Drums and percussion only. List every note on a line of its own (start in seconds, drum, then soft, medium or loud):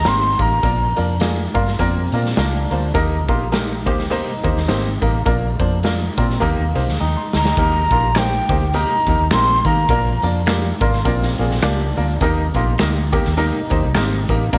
0.05 snare loud
0.05 closed hi-hat medium
0.38 kick medium
0.38 closed hi-hat medium
0.63 kick medium
0.63 closed hi-hat medium
0.96 closed hi-hat medium
1.20 snare loud
1.20 closed hi-hat medium
1.54 kick medium
1.54 closed hi-hat medium
1.67 snare soft
1.79 kick medium
1.79 closed hi-hat medium
2.12 closed hi-hat medium
2.26 snare soft
2.37 snare loud
2.37 closed hi-hat medium
2.71 closed hi-hat medium
2.94 kick loud
2.94 closed hi-hat medium
3.28 kick medium
3.28 closed hi-hat medium
3.52 snare loud
3.52 closed hi-hat medium
3.86 kick medium
3.86 closed hi-hat medium
3.99 snare soft
4.12 closed hi-hat medium
4.44 kick medium
4.44 closed hi-hat medium
4.57 snare soft
4.69 snare loud
4.69 closed hi-hat medium
5.02 kick medium
5.02 closed hi-hat medium
5.26 kick loud
5.26 closed hi-hat medium
5.60 kick medium
5.60 closed hi-hat medium
5.83 snare loud
5.83 closed hi-hat medium
6.18 kick medium
6.18 closed hi-hat medium
6.30 snare soft
6.42 kick medium
6.42 closed hi-hat medium
6.75 closed hi-hat medium
6.89 snare soft
7.33 snare medium
7.45 snare medium
7.57 kick loud
7.57 closed hi-hat medium
7.90 kick medium
7.90 closed hi-hat medium
8.15 finger snap medium
8.15 snare loud
8.15 closed hi-hat medium
8.49 kick loud
8.49 closed hi-hat medium
8.74 closed hi-hat medium
9.06 kick medium
9.06 closed hi-hat medium
9.31 finger snap medium
9.31 snare loud
9.31 closed hi-hat medium
9.65 kick medium
9.65 closed hi-hat medium
9.89 kick loud
9.89 closed hi-hat medium
10.22 closed hi-hat medium
10.46 finger snap medium
10.46 snare loud
10.46 closed hi-hat medium
10.80 kick medium
10.80 closed hi-hat medium
10.93 snare soft
11.05 kick medium
11.05 closed hi-hat medium
11.22 snare soft
11.38 closed hi-hat medium
11.51 snare soft
11.63 finger snap medium
11.63 snare loud
11.63 closed hi-hat medium
11.96 closed hi-hat medium
12.21 kick loud
12.21 closed hi-hat medium
12.54 kick medium
12.54 closed hi-hat medium
12.78 finger snap medium
12.78 snare loud
12.78 closed hi-hat medium
13.12 kick medium
13.12 closed hi-hat medium
13.25 snare soft
13.38 closed hi-hat medium
13.70 kick medium
13.70 closed hi-hat medium
13.95 finger snap medium
13.95 snare loud
13.95 closed hi-hat medium
14.28 kick medium
14.28 closed hi-hat medium
14.53 kick loud
14.53 closed hi-hat medium